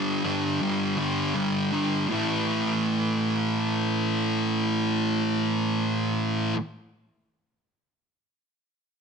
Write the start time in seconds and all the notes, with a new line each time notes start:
Already playing: G2 D3 G3
0.25 G2 D3 G3
0.61 G2 D3 G3
0.98 G2 D3 G3
1.35 G2 D3 G3
1.72 G2 D3 G3
2.08 A2 E3
2.12 A3